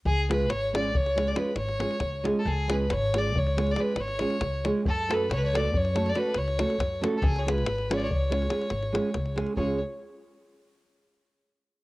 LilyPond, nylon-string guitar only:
\new Staff \with { instrumentName = "Nylon-string guitar" } { \time 11/8 \tempo 4 = 139 r8 <gis cis' eis' gis'>8 r8 <gis cis' eis' gis'>8 r8 <gis cis' eis' gis'>8 <gis cis' eis' gis'>8 r8 <gis cis' eis' gis'>8 r8 <gis cis' eis' gis'>8 | r8 <gis cis' eis' gis'>8 r8 <gis cis' eis' gis'>8 r8 <gis cis' eis' gis'>8 <gis cis' eis' gis'>8 r8 <gis cis' eis' gis'>8 r8 <gis cis' eis' gis'>8 | r8 <a cis' fis' a'>8 r8 <a cis' fis' a'>8 r8 <a cis' fis' a'>8 <a cis' fis' a'>8 r8 <a cis' fis' a'>8 r8 <a cis' fis' a'>8 | r8 <gis cis' eis' gis'>8 r8 <gis cis' eis' gis'>8 r8 <gis cis' eis' gis'>8 <gis cis' eis' gis'>8 r8 <gis cis' eis' gis'>8 r8 <gis cis' eis' gis'>8 |
<gis cis' eis' gis'>8 r1 r4 | }